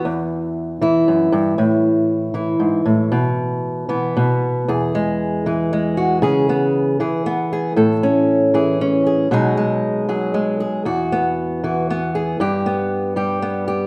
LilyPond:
\new Staff \with { instrumentName = "Steel-string acoustic guitar" } { \time 3/4 \key e \major \tempo 4 = 117 << { r4. e'4.~ | e'4. e'4. | r4. b4. | gis'8 gis4 gis'8 gis8 fis'8 |
gis'8 b4 gis'8 b8 gis'8 | a'8 cis'4 gis'8 cis'8 gis'8 | <fis gis dis' gis'>8 gis4 gis'8 gis8 gis'8 | fis'8 b4 fis'8 b8 gis'8 |
g'8 b4 g'8 b8 g'8 | } \\ { <e, e>4. e8 fis,8 g,8 | a,4. e8 gis,8 a,8 | b,4. e8 b,4 | e,4. e4. |
cis4. e4. | a,4. e4. | b,4. fis4. | e,4. e4. |
g,4. g4. | } >> }